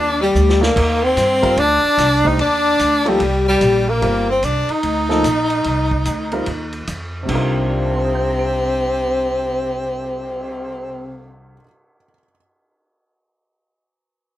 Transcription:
Already playing: upright bass D#2, tenor saxophone D4
0.21 tenor saxophone G3
0.35 upright bass D2, hi-hat pedal
0.49 snare
0.60 grand piano A#3 D#4 A4 D5, tenor saxophone A#3, snare
0.76 upright bass D#2, kick, crash
1.03 tenor saxophone C4
1.16 upright bass G2, snare, hi-hat pedal, ride
1.42 grand piano G3 C4 F4 A#4, kick, ride
1.57 upright bass D2, tenor saxophone D4, ride
1.84 muted upright bass stroke
1.98 upright bass C2, snare, hi-hat pedal, ride
2.24 grand piano A3 D4 G4 C5, tenor saxophone D#4, kick
2.38 upright bass D#2, tenor saxophone D4, ride
2.79 upright bass D2, hi-hat pedal, ride
3.05 grand piano F3 A#3 D#4 A4, tenor saxophone G3, ride
3.20 upright bass C2, ride
3.48 tenor saxophone G3
3.61 upright bass A#1, hi-hat pedal, ride
3.89 tenor saxophone A#3
4.02 upright bass G1, grand piano G3 C4 F4 A#4, ride
4.29 tenor saxophone C4
4.42 upright bass C2, tenor saxophone D4, hi-hat pedal, ride
4.68 tenor saxophone D#4, muted upright bass stroke, ride
4.83 upright bass D2, ride
5.09 grand piano F3 A#3 D#4 A4, snare
5.24 upright bass A#1, hi-hat pedal, ride
5.50 ride
5.64 upright bass C2, ride
5.91 kick
6.05 upright bass D2, hi-hat pedal, ride
6.32 grand piano G3 C4 F4 A#4, ride
6.46 upright bass D#2, ride
6.73 ride
6.87 upright bass F2, hi-hat pedal, ride
7.23 grand piano C3 G3
7.28 upright bass C2, tenor saxophone C3 C4, grand piano D4 D#4, kick, crash
7.33 grand piano F4 A#4
7.55 cymbal swell
7.70 grand piano D5
7.77 grand piano F5
7.85 grand piano A5
7.94 grand piano C6
8.04 grand piano D#6
8.15 grand piano G6
8.27 grand piano A#6
8.39 grand piano D7

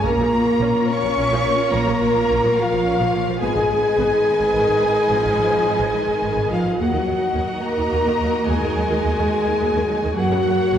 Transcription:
0.03 double bass section A#1, string section A#3 F4 A#4 C#5, cello section A#3, viola section C#4 F4, french horn section A#4, violin section A#5
0.17 double bass section A#1, viola section F3
0.33 double bass section A#1, viola section A#3
0.60 double bass section A#1, viola section C#4
0.87 cello section C#4, french horn section C#5, violin section C#6
1.03 double bass section A#1, viola section F3
1.17 double bass section A#1, viola section C#4
1.31 double bass section A#1, viola section F3
1.45 double bass section A#1, viola section A#3
1.72 double bass section A#1, cello section A#3, viola section C#4, french horn section A#4, violin section A#5
1.86 double bass section A#1, viola section F3
2.00 double bass section A#1, viola section A#3
2.15 double bass section A#1, viola section F3
2.29 double bass section A#1, viola section C#4
2.43 double bass section A#1, viola section F3
2.56 cello section F3, french horn section F4, violin section F5
2.72 double bass section A#1, viola section F3
2.85 double bass section A#1, viola section C#4
3.00 double bass section A#1, viola section F3
3.13 double bass section A#1, viola section A#3
3.27 double bass section A#1, viola section F3
3.40 double bass section G#1, cello section G#3, viola section B3 G#4, string section D#4 G#4 B4 D#5, french horn section G#4, violin section G#5
3.56 double bass section G#1, viola section D#3
3.70 double bass section G#1, viola section G#3
3.98 double bass section G#1, viola section B3
4.27 viola section D#3
4.41 double bass section G#1
4.55 double bass section G#1
4.68 double bass section G#1
4.83 double bass section G#1
5.11 double bass section G#1, viola section F3
5.26 double bass section G#1
5.39 double bass section G#1
5.54 double bass section G#1
5.66 double bass section G#1
5.80 double bass section G#1
5.96 viola section D#3
6.09 double bass section G#1
6.23 double bass section G#1
6.37 double bass section G#1
6.50 double bass section G#1, cello section F3, french horn section F4, violin section F5
6.64 double bass section G#1
6.78 double bass section D#2, cello section F#3, viola section A#3 F#4, string section D#4 F#4 A#4 D#5, french horn section F#4, violin section F#5
6.93 double bass section D#2, viola section D#3
7.07 double bass section D#2, viola section F#3
7.35 double bass section D#2, viola section A#3
7.61 cello section A#3, french horn section A#4, violin section A#5
7.78 double bass section D#2, viola section D#3
7.92 double bass section D#2, viola section A#3
8.06 double bass section D#2, viola section D#3
8.20 double bass section D#2, viola section F#3
8.46 double bass section D#2, cello section G#3, viola section A#3, french horn section G#4, violin section G#5
8.61 double bass section D#2, viola section D#3
8.76 double bass section D#2, viola section F#3
8.90 double bass section D#2, viola section D#3
9.04 double bass section D#2, viola section A#3
9.19 double bass section D#2, viola section D#3
9.47 double bass section D#2, viola section D#3
9.60 double bass section D#2, viola section A#3
9.74 double bass section D#2, viola section D#3
9.88 double bass section D#2, viola section F#3
10.02 double bass section D#2, viola section D#3
10.14 double bass section F#2, cello section F#3, string section A#3 F#4 A#4 C#5, viola section A#3 F#4, french horn section F#4, violin section F#5
10.31 double bass section F#2, viola section C#3
10.44 double bass section F#2, viola section F#3
10.72 double bass section F#2, viola section A#3

